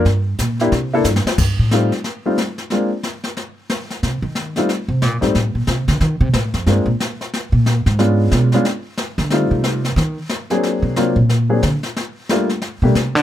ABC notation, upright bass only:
X:1
M:4/4
L:1/8
Q:"Swing" 1/4=182
K:Fmix
V:1 name="Upright bass" clef=bass
G,,2 B,,2 C,2 G,, z | G,, A,,2 z4 z | z8 | C, E,2 z2 C, B,, _A,, |
A,, B,, C, D, E, C, A,, F,, | G,, B,, z3 B,,2 _A,,- | _A,,2 =B,, z4 D,- | D, C,3 E, z3 |
z C,2 ^A,,3 D, z | z4 z =B,, C, D, |]